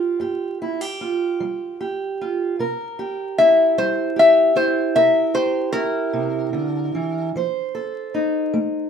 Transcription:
Already playing: F4 G4 B4
0.20 G2 G4
0.62 E4
0.81 G4
1.01 F4
1.40 G3
1.81 G4
2.21 F4
2.59 C3 A#4
2.99 G4
3.38 E4 E5
3.78 G3 C5
4.16 G4 E5
4.56 E4 C5
4.95 C3 A#4 E5
5.34 G4 C5
5.72 E4 A#4
6.13 C3
6.53 D3
6.95 E3
7.36 F3 C5
7.75 A4
8.14 D#4
8.54 A3

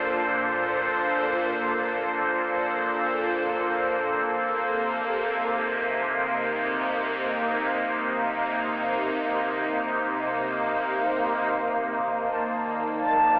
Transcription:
Already playing: A#1 A#2 A#3 D4 A4 C5
3.78 C2 C3
4.73 D#4
11.52 D#3 A5
12.44 D5
13.06 F4

